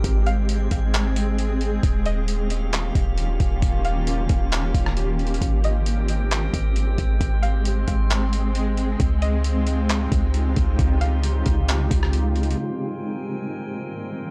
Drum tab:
HH |x-----x-----x-----x-----x-----x-----x-----x-----|x-----x-----x-----x-----x-----x-----x-----x-----|x-----x-----x-----x-----x-----x-----x-----x-x-x-|x-----x-----x-----x-----x-----x-----x-----x-----|
CP |------------------------x-----------------------|------------------------x-----------------------|------------------------x-----------------------|------------------------x-----------------------|
SD |------------------------------------------------|------------------------------------------------|---------------------------------r--------------|------------------------------------------------|
BD |o-----------------o-----------------------------|o-----------------------------o-----------o-----|o-----------------o-----------o-----------------|o-----------------------------o-----------o-----|

HH |x-----x-----x-----x-----x-----x-----x-----x-----|x-----x-----x-----x-----x-----x-----x-----x-----|x-----x-----x-----x-----x-----x-----x-----x-x-x-|------------------------------------------------|
CP |------------------------x-----------------------|------------------------x-----------------------|------------------------x-----------------------|------------------------------------------------|
SD |------------------------------------------------|------------------------------------------------|---------------------------------r--------------|------------------------------------------------|
BD |o-----------------o-----------------------------|o-----------------------------o-----------o-----|o-----------------o-----------o-----------------|------------------------------------------------|